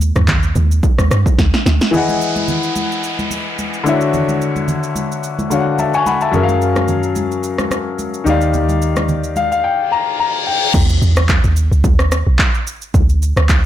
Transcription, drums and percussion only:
0.01 shaker medium
0.16 cross-stick medium
0.16 mid tom loud
0.16 high conga medium
0.16 shaker medium
0.28 kick medium
0.28 clap loud
0.28 low conga medium
0.28 shaker medium
0.43 shaker soft
0.56 high conga medium
0.56 low conga medium
0.56 shaker medium
0.71 shaker medium
0.83 kick loud
0.83 shaker medium
0.99 cross-stick medium
0.99 high conga medium
0.99 shaker medium
1.10 cross-stick loud
1.10 high conga medium
1.10 shaker loud
1.26 kick medium
1.26 shaker medium
1.39 kick loud
1.39 snare medium
1.39 shaker medium
1.54 snare medium
1.54 shaker medium
1.66 snare medium
1.66 high conga medium
1.66 shaker medium
1.81 snare loud
1.81 shaker medium
1.94 low conga medium
1.94 shaker medium
2.09 high conga medium
2.09 shaker soft
2.22 shaker medium
2.36 high conga medium
2.36 shaker medium
2.48 low conga medium
2.48 shaker medium
2.63 shaker soft
2.76 high conga medium
2.76 shaker medium
2.92 shaker medium
3.04 shaker medium
3.19 high conga medium
3.19 shaker medium
3.31 high conga medium
3.31 shaker medium
3.59 high conga medium
3.59 shaker medium
3.74 shaker soft
3.86 high conga medium
3.86 shaker medium
4.01 shaker medium
4.13 low conga medium
4.13 shaker medium
4.29 high conga medium
4.29 shaker soft
4.42 shaker medium
4.56 high conga medium
4.56 shaker soft
4.68 low conga medium
4.68 shaker medium
4.83 shaker soft
4.96 high conga medium
4.96 shaker medium
5.12 shaker medium
5.23 shaker medium
5.39 high conga medium
5.39 shaker medium
5.51 high conga medium
5.51 shaker medium
5.79 high conga medium
5.79 shaker medium
5.94 shaker soft
6.06 high conga medium
6.06 shaker medium
6.21 shaker soft
6.33 low conga medium
6.33 shaker medium
6.49 high conga medium
6.49 shaker soft
6.62 shaker medium
6.76 cross-stick medium
6.76 high conga medium
6.76 shaker medium
6.88 low conga medium
6.88 shaker medium
7.03 shaker soft
7.16 high conga medium
7.16 shaker medium
7.32 shaker medium
7.43 shaker medium
7.58 cross-stick medium
7.58 high conga medium
7.58 shaker medium
7.71 cross-stick medium
7.71 high conga medium
7.71 shaker medium
7.99 high conga medium
7.99 shaker medium
8.14 shaker soft
8.26 high conga medium
8.26 shaker medium
8.41 shaker medium
8.54 low conga medium
8.54 shaker medium
8.69 high conga medium
8.69 shaker soft
8.82 shaker medium
8.96 cross-stick medium
8.96 high conga medium
8.96 shaker medium
9.09 low conga medium
9.09 shaker medium
9.24 shaker soft
9.36 high conga medium
9.36 shaker medium
9.52 shaker medium
10.74 kick loud
10.74 crash loud
10.74 shaker medium
10.89 shaker medium
11.02 shaker medium
11.17 cross-stick loud
11.17 shaker medium
11.29 kick medium
11.29 clap loud
11.29 shaker medium
11.44 shaker soft
11.56 shaker medium
11.72 shaker medium
11.84 kick loud
11.84 shaker medium
11.99 cross-stick medium
11.99 shaker medium
12.12 cross-stick loud
12.12 shaker medium
12.39 kick loud
12.39 clap loud
12.39 shaker medium
12.54 shaker medium
12.67 shaker medium
12.82 shaker medium
12.94 kick loud
12.94 shaker medium
13.09 shaker medium
13.22 shaker medium
13.37 cross-stick loud
13.37 shaker medium
13.49 kick medium
13.49 clap loud
13.49 shaker medium

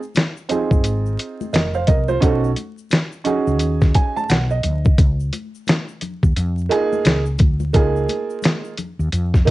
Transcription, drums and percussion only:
0.03 shaker soft
0.15 snare loud
0.15 closed hi-hat medium
0.15 high conga soft
0.15 shaker medium
0.37 shaker soft
0.49 closed hi-hat medium
0.49 low conga medium
0.49 shaker soft
0.71 kick medium
0.71 shaker soft
0.84 closed hi-hat medium
0.84 shaker medium
1.06 shaker soft
1.19 closed hi-hat medium
1.19 shaker soft
1.41 high conga medium
1.41 shaker soft
1.53 snare loud
1.53 closed hi-hat medium
1.53 shaker medium
1.74 shaker soft
1.87 kick medium
1.87 closed hi-hat medium
1.87 low conga medium
1.87 shaker soft
2.08 high conga medium
2.08 shaker soft
2.22 kick loud
2.22 closed hi-hat medium
2.22 shaker medium
2.44 shaker soft
2.56 closed hi-hat medium
2.56 high conga soft
2.56 shaker soft
2.78 shaker soft
2.91 snare loud
2.91 closed hi-hat loud
2.91 high conga soft
2.91 shaker medium
3.12 shaker soft
3.25 closed hi-hat medium
3.25 low conga medium
3.25 shaker soft
3.47 shaker medium
3.59 closed hi-hat medium
3.59 shaker medium
3.81 kick medium
3.81 snare soft
3.81 shaker soft
3.95 kick medium
3.95 closed hi-hat medium
3.95 shaker soft
4.17 high conga medium
4.17 shaker soft
4.29 snare loud
4.29 closed hi-hat medium
4.29 shaker medium
4.50 shaker soft
4.63 closed hi-hat medium
4.63 low conga medium
4.63 shaker soft
4.85 kick loud
4.85 high conga medium
4.85 shaker soft
4.98 kick loud
4.98 closed hi-hat medium
4.98 shaker medium
5.20 shaker soft
5.33 closed hi-hat medium
5.33 high conga soft
5.33 shaker soft
5.55 shaker soft
5.67 snare loud
5.67 closed hi-hat medium
5.67 high conga soft
5.67 shaker medium
5.88 shaker soft
6.01 closed hi-hat medium
6.01 low conga medium
6.01 shaker soft
6.23 kick medium
6.23 shaker medium
6.36 closed hi-hat medium
6.36 shaker medium
6.58 shaker soft
6.71 closed hi-hat medium
6.71 shaker soft
6.93 high conga medium
6.93 shaker soft
7.05 snare loud
7.05 closed hi-hat loud
7.05 shaker medium
7.26 shaker soft
7.38 kick loud
7.38 closed hi-hat medium
7.38 low conga medium
7.38 shaker soft
7.60 high conga medium
7.60 shaker soft
7.74 kick loud
7.74 closed hi-hat medium
7.74 shaker medium
7.96 shaker soft
8.09 closed hi-hat medium
8.09 high conga soft
8.09 shaker soft
8.30 shaker soft
8.42 snare loud
8.42 closed hi-hat medium
8.42 high conga soft
8.42 shaker medium
8.64 shaker soft
8.78 closed hi-hat medium
8.78 low conga medium
8.78 shaker soft
9.00 shaker soft
9.12 closed hi-hat medium
9.12 shaker medium
9.34 kick medium
9.34 snare soft
9.34 shaker soft
9.47 kick medium
9.47 closed hi-hat medium
9.47 shaker soft

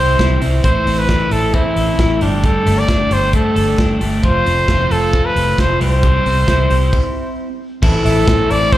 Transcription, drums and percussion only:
0.19 kick loud
0.19 snare loud
0.19 closed hi-hat medium
0.42 open hi-hat medium
0.64 kick loud
0.64 closed hi-hat medium
0.87 open hi-hat medium
1.09 kick loud
1.09 snare medium
1.31 open hi-hat medium
1.54 kick medium
1.54 closed hi-hat medium
1.76 open hi-hat medium
1.99 kick loud
1.99 snare loud
1.99 closed hi-hat medium
2.21 open hi-hat medium
2.44 kick loud
2.44 closed hi-hat medium
2.67 open hi-hat medium
2.88 kick loud
2.88 snare loud
2.88 closed hi-hat medium
3.11 open hi-hat medium
3.33 kick medium
3.33 closed hi-hat medium
3.56 open hi-hat medium
3.78 kick loud
3.78 snare loud
4.01 open hi-hat medium
4.24 kick loud
4.24 closed hi-hat medium
4.46 open hi-hat medium
4.68 kick loud
4.68 snare loud
4.68 closed hi-hat medium
4.91 open hi-hat medium
5.13 kick loud
5.13 closed hi-hat medium
5.36 open hi-hat medium
5.58 kick loud
5.58 snare loud
5.58 closed hi-hat medium
5.81 open hi-hat medium
6.03 kick loud
6.03 closed hi-hat medium
6.26 open hi-hat medium
6.48 kick loud
6.48 snare loud
6.48 closed hi-hat medium
6.70 open hi-hat medium
6.93 kick loud
6.93 crash medium
7.83 kick loud
7.83 crash medium
8.06 open hi-hat medium
8.28 kick loud
8.28 snare loud
8.28 closed hi-hat medium
8.51 open hi-hat medium
8.72 kick loud
8.72 closed hi-hat medium

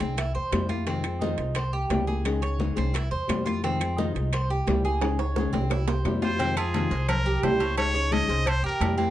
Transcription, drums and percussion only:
0.00 high conga medium
0.00 high timbale medium
0.18 high bongo medium
0.18 high conga soft
0.18 high timbale loud
0.18 claves medium
0.35 high bongo soft
0.35 high conga soft
0.52 high bongo medium
0.52 low bongo medium
0.52 high conga medium
0.52 high timbale medium
0.52 low timbale medium
0.52 claves medium
0.69 high bongo soft
0.69 high conga medium
0.69 high timbale medium
0.87 high bongo medium
0.87 high conga soft
0.87 high timbale medium
1.04 high conga soft
1.04 high timbale medium
1.04 claves medium
1.21 high bongo medium
1.21 high conga medium
1.21 low timbale medium
1.38 high bongo soft
1.38 high conga soft
1.38 high timbale medium
1.55 high bongo medium
1.55 high conga soft
1.55 high timbale medium
1.55 claves medium
1.74 high bongo soft
1.74 high conga soft
1.90 high bongo medium
1.90 low bongo medium
1.90 high conga medium
1.90 high timbale medium
1.90 low timbale medium
2.08 high bongo soft
2.08 high conga medium
2.25 high bongo medium
2.25 high conga soft
2.25 high timbale medium
2.25 claves medium
2.42 high bongo soft
2.42 high conga soft
2.42 high timbale medium
2.60 high bongo medium
2.60 high conga medium
2.60 low timbale medium
2.77 high conga medium
2.77 high timbale medium
2.94 high bongo medium
2.94 high conga soft
2.94 high timbale medium
2.94 claves medium
3.11 high bongo soft
3.11 high conga soft
3.29 high bongo medium
3.29 low bongo medium
3.29 high conga medium
3.29 high timbale medium
3.29 low timbale medium
3.29 claves medium
3.47 high bongo soft
3.47 high conga medium
3.47 high timbale medium
3.64 high bongo medium
3.64 high conga soft
3.64 high timbale medium
3.81 high conga soft
3.81 high timbale medium
3.81 claves medium
3.98 high bongo medium
3.98 high conga medium
3.98 low timbale medium
4.16 high bongo soft
4.16 high conga soft
4.16 high timbale medium
4.33 high bongo medium
4.33 high conga soft
4.33 high timbale medium
4.33 claves medium
4.50 high bongo soft
4.50 high conga soft
4.67 high bongo medium
4.67 low bongo medium
4.67 high conga medium
4.67 high timbale medium
4.67 low timbale medium
4.85 high bongo soft
5.01 high bongo medium
5.01 high conga soft
5.01 high timbale medium
5.01 claves medium
5.19 high bongo soft
5.19 high conga soft
5.19 high timbale medium
5.36 high bongo medium
5.36 high conga medium
5.36 high timbale medium
5.54 high conga medium
5.54 low timbale medium
5.70 high bongo medium
5.70 high conga soft
5.70 low timbale loud
5.70 claves medium
5.88 high bongo medium
5.88 high conga soft
5.88 low timbale loud
6.05 low bongo medium
6.05 high conga medium
6.05 low timbale medium
6.05 claves medium
6.22 low bongo medium
6.22 high conga medium
6.22 low timbale medium
6.39 cowbell loud
6.39 high conga soft
6.39 low agogo medium
6.57 high conga soft
6.57 low agogo loud
6.57 claves medium
6.74 cowbell medium
6.74 high conga medium
6.74 low timbale medium
6.74 low agogo medium
6.91 cowbell medium
6.91 high conga soft
7.09 cowbell loud
7.09 high conga soft
7.09 low conga medium
7.09 low agogo loud
7.09 claves medium
7.26 high conga soft
7.26 low conga medium
7.43 cowbell medium
7.43 high conga medium
7.43 low timbale medium
7.43 low agogo medium
7.60 cowbell medium
7.60 low agogo medium
7.78 cowbell loud
7.78 low agogo loud
7.78 claves medium
7.95 high conga soft
8.12 cowbell medium
8.12 high conga medium
8.12 low timbale medium
8.12 low agogo medium
8.30 cowbell medium
8.46 cowbell loud
8.46 high conga soft
8.46 low agogo loud
8.46 claves medium
8.63 high conga soft
8.81 cowbell medium
8.81 high conga medium
8.81 low timbale medium
8.81 low agogo loud
8.81 claves medium
8.98 cowbell medium
8.98 high conga medium

